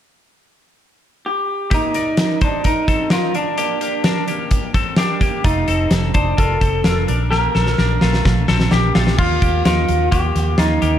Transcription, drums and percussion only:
1.71 kick, closed hi-hat
1.94 closed hi-hat
2.17 snare, closed hi-hat
2.41 kick, closed hi-hat
2.64 kick, closed hi-hat
2.88 kick, snare, closed hi-hat
3.10 snare, closed hi-hat
3.34 closed hi-hat
3.58 closed hi-hat
3.81 closed hi-hat
4.04 snare, closed hi-hat
4.28 closed hi-hat
4.51 kick, closed hi-hat
4.74 kick, snare, closed hi-hat
4.97 snare, closed hi-hat
5.21 kick, closed hi-hat
5.44 kick, closed hi-hat
5.68 closed hi-hat
5.91 snare, closed hi-hat
6.14 kick, closed hi-hat
6.38 kick, closed hi-hat
6.61 kick, closed hi-hat
6.84 snare, closed hi-hat
7.08 closed hi-hat
7.32 snare
7.55 snare
7.66 snare
7.78 snare
8.01 snare
8.13 snare
8.25 kick, snare
8.48 snare
8.60 snare
8.71 snare
8.95 snare
9.07 snare
9.18 kick, crash
9.42 kick, closed hi-hat
9.65 snare, closed hi-hat
9.89 closed hi-hat
10.12 kick, closed hi-hat
10.36 snare, closed hi-hat
10.58 snare, closed hi-hat
10.82 closed hi-hat

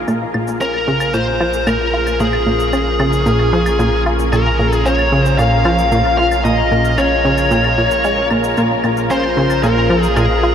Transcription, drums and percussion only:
0.08 cabasa, claves
0.34 claves
0.47 cabasa
0.61 cabasa
0.74 claves
1.00 cabasa, claves
1.14 cabasa
1.40 claves
1.53 cabasa
1.67 cabasa, claves
2.07 cabasa, claves
2.20 cabasa
2.33 claves
2.60 cabasa
2.73 cabasa, claves
3.00 claves
3.13 cabasa
3.26 cabasa
3.39 claves
3.66 cabasa, claves
3.80 cabasa
4.06 claves
4.19 cabasa
4.33 cabasa, claves
4.73 cabasa, claves
4.86 cabasa
4.99 claves
5.26 cabasa
5.39 cabasa, claves
5.65 claves
5.78 cabasa
5.92 cabasa
6.05 claves
6.31 cabasa, claves
6.45 cabasa
6.71 claves
6.85 cabasa
6.98 cabasa, claves
7.38 cabasa, claves
7.51 cabasa
7.64 claves
7.91 cabasa
8.04 cabasa, claves
8.30 claves
8.44 cabasa
8.57 cabasa, claves
8.84 claves
8.97 cabasa
9.10 cabasa
9.23 claves
9.50 cabasa, claves
9.63 cabasa
9.90 claves
10.03 cabasa
10.16 cabasa, claves

